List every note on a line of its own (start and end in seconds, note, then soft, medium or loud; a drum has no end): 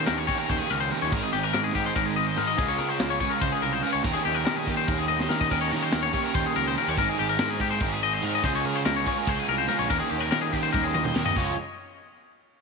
0.00 0.26 D#3 medium
0.00 0.29 A#3 medium
0.00 0.27 C#4 medium
0.00 0.27 G4 medium
0.06 0.27 D#2 loud
0.06 0.18 A#4 medium
0.06 snare loud
0.06 ride loud
0.18 0.26 C#5 medium
0.27 0.90 D#3 medium
0.27 0.91 A#3 medium
0.27 0.90 C#4 medium
0.27 0.89 G4 medium
0.27 0.38 C#5 medium
0.27 kick medium
0.27 ride medium
0.38 0.49 A#4 medium
0.49 0.59 D#2 loud
0.49 0.59 C5 medium
0.49 kick loud
0.49 snare soft
0.49 ride medium
0.59 0.70 G#4 medium
0.70 0.90 C#2 medium
0.70 0.80 A#4 medium
0.70 snare soft
0.70 ride medium
0.80 0.91 C5 medium
0.91 1.11 D#3 medium
0.91 1.11 A#3 medium
0.91 1.12 C#4 medium
0.91 1.12 G4 medium
0.91 1.02 A#4 medium
0.91 ride medium
1.02 1.12 D#2 medium
1.02 1.13 C#5 medium
1.11 1.22 G#1 loud
1.11 1.71 G#2 medium
1.11 1.72 D#3 medium
1.11 1.75 G#3 loud
1.11 1.75 C4 loud
1.11 1.74 D#4 loud
1.11 1.23 A#4 loud
1.11 kick loud
1.11 ride loud
1.23 1.32 G#4 medium
1.33 1.52 G#1 medium
1.33 1.43 G4 medium
1.33 snare soft
1.33 ride medium
1.43 1.52 A#4 medium
1.53 1.92 G#2 loud
1.53 1.64 A#4 medium
1.53 snare loud
1.53 ride loud
1.64 1.75 G#4 medium
1.72 2.35 G#2 medium
1.72 2.36 D#3 medium
1.72 2.36 G#3 loud
1.72 2.36 C4 medium
1.72 2.35 D#4 medium
1.72 1.85 G4 medium
1.72 kick medium
1.72 ride medium
1.86 1.95 C5 medium
1.96 2.34 G#1 medium
1.96 2.06 A#4 medium
1.96 kick loud
1.96 snare soft
1.96 ride loud
2.06 2.16 G#4 medium
2.16 2.27 D#5 medium
2.16 ride medium
2.27 2.37 C5 medium
2.36 2.57 G#2 medium
2.36 2.58 G#2 medium
2.36 2.57 D#3 medium
2.36 2.58 G#3 medium
2.36 2.57 C4 medium
2.36 2.57 D#4 medium
2.36 2.48 A#4 medium
2.36 ride medium
2.47 2.58 D#5 medium
2.57 2.78 C#2 loud
2.57 3.19 C#3 medium
2.57 3.20 G#3 medium
2.57 3.21 C#4 loud
2.57 3.19 F4 loud
2.57 2.69 G#4 medium
2.57 kick loud
2.57 ride loud
2.68 2.79 C#5 medium
2.78 2.98 C#3 medium
2.78 2.89 A#4 medium
2.78 snare soft
2.78 ride medium
2.89 3.00 C5 medium
3.00 3.19 C#2 medium
3.00 3.10 A#4 medium
3.00 snare loud
3.00 ride loud
3.10 3.19 C#5 medium
3.20 3.82 C#3 medium
3.20 3.83 G#3 medium
3.20 3.85 C#4 medium
3.20 3.82 F4 loud
3.20 3.31 C#5 medium
3.20 kick medium
3.20 ride medium
3.30 3.41 A#4 medium
3.41 3.52 C#2 loud
3.41 3.52 C5 medium
3.41 kick loud
3.41 ride loud
3.52 3.63 G#4 medium
3.62 3.82 C2 medium
3.62 3.73 A#4 medium
3.62 ride medium
3.73 3.83 C5 medium
3.83 4.03 C#3 medium
3.83 4.04 G#3 medium
3.83 4.06 C#4 medium
3.83 4.05 F4 medium
3.83 3.92 A#4 medium
3.83 ride medium
3.93 4.04 C#2 medium
3.93 4.03 C#5 medium
4.03 4.14 D#2 loud
4.03 4.66 D#3 medium
4.03 4.68 A#3 loud
4.03 4.68 C#4 loud
4.03 4.70 G4 loud
4.03 4.13 A#4 medium
4.03 kick loud
4.03 ride loud
4.14 4.25 G#4 medium
4.25 4.45 D#2 medium
4.25 4.34 G4 medium
4.25 snare soft
4.25 ride medium
4.34 4.44 A#4 medium
4.45 4.85 D#3 medium
4.45 4.56 A#4 medium
4.45 snare loud
4.45 ride loud
4.56 4.67 G#4 medium
4.66 5.28 D#3 medium
4.66 5.32 A#3 medium
4.66 5.30 C#4 medium
4.66 4.77 G4 medium
4.66 5.29 G4 medium
4.66 kick medium
4.66 snare soft
4.66 ride medium
4.77 4.87 C5 medium
4.87 5.27 D#2 medium
4.87 4.98 A#4 medium
4.87 kick loud
4.87 ride medium
4.98 5.08 G#4 medium
5.08 5.20 D#5 medium
5.08 ride medium
5.20 5.30 C5 medium
5.20 snare medium
5.29 5.49 D#3 loud
5.29 5.51 A#3 medium
5.29 5.50 C#4 medium
5.29 5.53 G4 loud
5.29 5.40 A#4 medium
5.29 snare medium
5.33 5.49 D#3 medium
5.41 5.51 D#5 medium
5.41 kick loud
5.51 5.70 D#2 loud
5.51 6.12 D#3 medium
5.51 6.16 A#3 loud
5.51 6.13 C#4 loud
5.51 6.13 G4 loud
5.51 5.61 A#4 medium
5.51 kick loud
5.51 crash loud
5.61 5.72 C#5 medium
5.72 5.91 D#3 medium
5.72 5.83 A#4 medium
5.72 snare soft
5.72 ride medium
5.83 5.92 C5 medium
5.92 6.12 D#2 medium
5.92 6.02 A#4 medium
5.92 snare loud
5.92 ride loud
6.03 6.13 C#5 medium
6.13 6.75 D#3 medium
6.13 6.76 A#3 medium
6.13 6.76 C#4 medium
6.13 6.75 G4 medium
6.13 6.24 C#5 medium
6.13 kick medium
6.13 ride medium
6.24 6.34 A#4 medium
6.34 6.44 D#2 loud
6.34 6.45 C5 medium
6.34 kick loud
6.34 ride loud
6.46 6.56 G#4 medium
6.56 6.75 C#2 medium
6.56 6.66 A#4 medium
6.56 ride medium
6.68 6.77 C5 medium
6.75 6.96 D#3 medium
6.75 6.97 A#3 medium
6.75 6.97 C#4 medium
6.75 6.89 A#4 medium
6.75 ride medium
6.80 6.98 G4 medium
6.88 6.97 D#2 medium
6.88 6.98 C#5 medium
6.97 7.07 G#1 loud
6.97 7.59 G#2 medium
6.97 7.59 D#3 loud
6.97 7.61 G#3 medium
6.97 7.62 C4 loud
6.97 7.60 D#4 loud
6.97 7.09 A#4 medium
6.97 kick loud
6.97 ride loud
7.02 7.63 G#4 loud
7.09 7.19 G#4 medium
7.18 7.38 G#1 medium
7.18 7.29 G4 medium
7.18 ride medium
7.29 7.38 A#4 medium
7.39 7.78 G#2 medium
7.39 7.50 A#4 medium
7.39 snare loud
7.39 ride loud
7.50 7.60 G#4 medium
7.59 8.21 G#2 medium
7.59 8.22 D#3 medium
7.59 8.22 G#3 medium
7.59 8.22 C4 medium
7.59 8.22 D#4 medium
7.59 7.70 G4 medium
7.59 8.21 G#4 loud
7.59 kick medium
7.59 ride medium
7.70 7.81 C5 medium
7.80 8.19 G#1 loud
7.80 7.92 A#4 medium
7.80 kick loud
7.80 ride loud
7.92 8.02 G#4 medium
8.01 8.13 D#5 medium
8.01 ride medium
8.13 8.25 C5 medium
8.22 8.42 G#2 loud
8.22 8.43 G#2 medium
8.22 8.42 D#3 medium
8.22 8.42 G#3 medium
8.22 8.43 C4 medium
8.22 8.42 D#4 medium
8.22 8.42 G#4 medium
8.22 8.34 A#4 medium
8.22 ride medium
8.35 8.44 D#5 medium
8.43 8.63 C#2 loud
8.43 9.05 C#3 medium
8.43 9.05 G#3 medium
8.43 9.07 C#4 loud
8.43 9.06 F4 loud
8.43 9.04 G#4 loud
8.43 8.55 C5 loud
8.43 kick loud
8.43 ride loud
8.55 8.65 C#5 medium
8.64 8.84 C#3 medium
8.64 8.76 A#4 medium
8.64 ride medium
8.76 8.85 C5 medium
8.85 9.05 C#2 loud
8.85 8.96 A#4 medium
8.85 snare loud
8.85 ride loud
8.96 9.07 C#5 medium
9.05 9.67 C#3 medium
9.05 9.68 G#3 medium
9.05 9.70 C#4 medium
9.05 9.70 F4 medium
9.05 9.67 G#4 medium
9.05 9.18 C#5 medium
9.05 kick medium
9.05 ride medium
9.18 9.29 A#4 medium
9.27 9.37 C#2 loud
9.27 9.39 C5 medium
9.27 kick loud
9.27 ride loud
9.39 9.48 G#4 medium
9.48 9.67 C2 medium
9.48 9.58 A#4 medium
9.48 ride medium
9.58 9.68 C5 medium
9.68 9.88 C#3 medium
9.68 9.88 G#3 medium
9.68 9.90 C#4 medium
9.68 9.91 F4 medium
9.68 9.90 G#4 medium
9.68 9.79 A#4 medium
9.68 snare soft
9.68 ride medium
9.79 9.89 A#1 medium
9.79 9.89 C#5 medium
9.88 10.00 D#2 loud
9.88 10.50 D#3 loud
9.88 10.51 A#3 medium
9.88 10.52 C#4 medium
9.88 10.52 G4 loud
9.88 9.99 A#4 loud
9.88 kick loud
9.88 ride loud
10.00 10.10 G#4 medium
10.10 10.30 D#2 medium
10.10 10.20 G4 medium
10.10 ride medium
10.20 10.30 A#4 medium
10.31 10.70 D#3 loud
10.31 10.41 A#4 medium
10.31 snare loud
10.31 ride loud
10.42 10.52 G#4 medium
10.52 11.14 D#3 medium
10.52 11.14 A#3 medium
10.52 11.14 C#4 medium
10.52 10.62 G4 medium
10.52 11.13 G4 medium
10.52 kick medium
10.52 ride medium
10.63 10.72 C5 medium
10.73 11.12 D#2 medium
10.73 10.83 A#4 medium
10.73 kick loud
10.73 high tom medium
10.84 10.94 G#4 medium
10.94 11.04 D#5 medium
10.94 mid tom medium
11.04 11.16 C5 medium
11.04 mid tom medium
11.14 11.34 D#2 medium
11.14 11.35 D#3 medium
11.14 11.36 A#3 medium
11.14 11.35 C#4 medium
11.14 11.34 G4 medium
11.14 11.25 A#4 medium
11.14 snare loud
11.26 11.36 D#5 medium
11.26 floor tom medium
11.36 11.56 C#2 loud
11.36 11.53 C#3 medium
11.36 11.53 F3 loud
11.36 11.53 G#3 loud
11.36 11.53 C#4 medium
11.36 11.53 F4 loud
11.36 11.57 C#5 medium
11.36 kick loud
11.36 crash medium